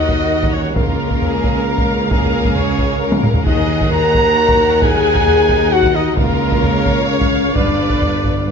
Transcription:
0.00 0.72 D#2 medium
0.00 0.72 D#3 medium
0.00 0.52 D#4 medium
0.00 0.76 F#4 medium
0.00 0.72 A#4 medium
0.00 0.53 D#5 medium
0.00 0.55 D#5 medium
0.00 0.72 F#5 medium
0.09 taiko medium
0.43 taiko medium
0.53 0.76 C#4 medium
0.53 0.76 C#5 medium
0.53 0.75 C#5 medium
0.75 3.42 C#2 medium
0.75 3.43 C#2 medium
0.75 3.42 C#3 medium
0.75 2.11 A#3 medium
0.75 1.20 F4 medium
0.75 1.94 A#4 medium
0.75 2.08 A#4 medium
0.75 3.43 A#4 medium
0.75 3.43 F5 medium
0.75 taiko medium
0.88 taiko low soft
1.10 taiko medium
1.21 1.66 G#4 medium
1.21 taiko low medium
1.44 taiko medium
1.65 2.10 A#4 medium
1.78 taiko medium
2.11 2.56 A#3 medium
2.11 2.99 G#4 medium
2.11 2.58 A#4 medium
2.11 2.56 A#4 medium
2.11 taiko medium
2.22 taiko low medium
2.45 taiko medium
2.56 3.24 C#4 medium
2.56 3.24 C#5 medium
2.56 taiko low medium
2.78 taiko medium
3.01 3.45 A#4 medium
3.12 taiko high loud
3.23 taiko low-mid loud
3.34 taiko low medium
3.45 6.13 D#2 medium
3.45 6.01 D#2 medium
3.45 6.13 D#3 medium
3.45 3.89 D#4 medium
3.45 4.37 G#4 medium
3.45 6.14 A#4 medium
3.45 3.88 D#5 medium
3.45 3.89 D#5 medium
3.45 6.14 F#5 medium
3.45 taiko medium
3.58 taiko low medium
3.81 taiko medium
3.91 4.80 A#4 loud
3.91 4.81 A#5 loud
3.91 4.83 A#5 loud
3.91 taiko low medium
4.15 taiko medium
4.37 4.81 F#4 medium
4.49 taiko loud
4.82 6.18 D#4 medium
4.82 5.71 G#4 loud
4.82 5.74 G#5 loud
4.82 5.73 G#5 loud
4.82 taiko medium
4.94 taiko low soft
5.15 taiko medium
5.28 taiko low medium
5.49 taiko medium
5.72 5.95 F#4 loud
5.72 5.95 F#5 loud
5.72 5.97 F#5 loud
5.83 taiko medium
5.94 6.17 D#4 loud
5.94 6.16 D#5 medium
5.94 6.18 D#5 medium
6.15 7.52 C#2 medium
6.15 7.53 C#2 medium
6.15 7.52 C#3 medium
6.15 7.08 A#3 medium
6.15 6.63 F4 medium
6.15 7.51 A#4 medium
6.15 7.07 A#4 medium
6.15 7.08 A#4 loud
6.15 8.51 F5 medium
6.15 taiko medium
6.29 taiko low soft
6.52 taiko medium
6.61 7.54 C#5 medium
6.61 taiko low medium
6.86 taiko medium
7.07 7.54 C#4 medium
7.07 7.56 C#5 medium
7.07 7.54 C#5 medium
7.21 taiko medium
7.54 8.51 G1 medium
7.54 8.51 G2 medium
7.54 8.51 D4 medium
7.54 8.51 B4 medium
7.54 8.51 D5 medium
7.54 taiko medium
7.67 taiko low soft
7.90 taiko medium
8.02 taiko low medium
8.24 taiko medium

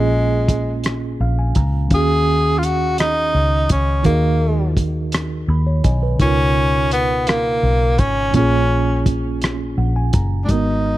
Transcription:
0.00 1.16 A#1 medium
0.00 1.86 A#2 medium
0.00 0.81 G#3 medium
0.00 1.87 A#3 medium
0.00 1.88 C#4 medium
0.00 1.89 F4 medium
0.00 1.90 G#4 medium
0.48 kick loud
0.48 closed hi-hat medium
0.84 cross-stick medium
0.84 closed hi-hat medium
1.20 1.52 A#1 medium
1.20 1.37 F5 medium
1.39 1.55 G#5 medium
1.55 1.88 C#2 medium
1.55 1.89 A#5 medium
1.55 kick medium
1.55 closed hi-hat medium
1.88 3.30 D#2 medium
1.88 4.00 D#3 medium
1.88 4.01 C#4 soft
1.88 4.02 F5 medium
1.88 kick loud
1.88 closed hi-hat medium
1.94 4.03 F#4 medium
1.94 2.60 G#4 loud
1.94 4.04 G#4 medium
2.58 2.66 F4 medium
2.63 2.99 F#4 loud
2.63 closed hi-hat medium
2.98 3.67 D#4 loud
2.98 cross-stick loud
2.98 closed hi-hat medium
3.35 3.67 C#2 medium
3.69 4.03 C#2 medium
3.69 4.04 C#4 medium
3.69 kick medium
3.69 closed hi-hat medium
4.02 5.45 D#2 medium
4.02 6.14 D#3 medium
4.02 4.73 A#3 medium
4.02 6.15 D#4 medium
4.02 6.16 F#4 medium
4.02 kick loud
4.02 closed hi-hat medium
4.07 6.17 G#4 soft
4.07 5.12 A#4 medium
4.07 5.13 D#5 medium
4.77 kick medium
4.77 closed hi-hat medium
5.12 cross-stick loud
5.12 closed hi-hat medium
5.48 5.81 D#2 medium
5.48 5.83 B5 medium
5.67 5.84 C#5 medium
5.84 6.17 B1 medium
5.84 6.01 D#5 medium
5.84 6.18 G#5 medium
5.84 kick medium
5.84 closed hi-hat medium
6.03 6.36 B4 medium
6.16 8.29 B2 medium
6.16 8.28 C#3 medium
6.16 kick loud
6.16 closed hi-hat medium
6.20 7.59 C#2 medium
6.20 6.88 C#4 loud
6.20 8.31 D#4 medium
6.20 8.31 F4 medium
6.20 8.32 A#4 medium
6.91 7.29 B3 loud
6.91 closed hi-hat medium
7.27 8.00 A#3 loud
7.27 cross-stick loud
7.27 closed hi-hat medium
7.63 7.99 B1 medium
7.98 8.31 G#1 medium
7.98 8.35 C#4 medium
7.98 kick medium
7.98 closed hi-hat medium
8.31 9.74 A#1 loud
8.31 10.43 A#2 medium
8.31 10.44 A#3 medium
8.31 10.45 C#4 medium
8.31 kick loud
8.31 closed hi-hat medium
8.35 9.02 C#4 medium
8.35 10.46 F4 medium
8.35 10.47 G#4 medium
9.06 kick medium
9.06 closed hi-hat medium
9.42 cross-stick loud
9.42 closed hi-hat medium
9.78 10.10 A#1 medium
9.78 9.94 F#5 medium
9.96 10.12 G#5 medium
10.13 10.46 F#1 medium
10.13 10.47 A#5 medium
10.13 kick medium
10.13 closed hi-hat medium
10.44 10.98 G#3 medium
10.44 10.53 D4 medium
10.44 10.98 D#4 soft
10.49 10.98 G#1 medium
10.49 10.98 D#4 medium
10.49 10.98 F#4 soft
10.49 10.98 A#4 medium
10.49 kick loud
10.49 closed hi-hat medium
10.54 10.98 B3 medium

